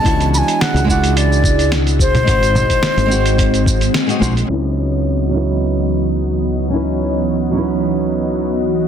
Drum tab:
CC |----------------|----------------|x---------------|----------------|
HH |xx-xxx-xx--xxx-x|xx-xxx-xxx-xxx-x|----------------|----------------|
SH |xxxxxxxxxxxxxxxx|xxxxxxxxxxxxxxxx|----------------|----------------|
SD |----o-------o---|----o-------o---|----------------|----------------|
CG |---------------O|--O-----------O-|----------------|----------------|
BD |o-----o---o---o-|o--o----o-o-----|----------------|----------------|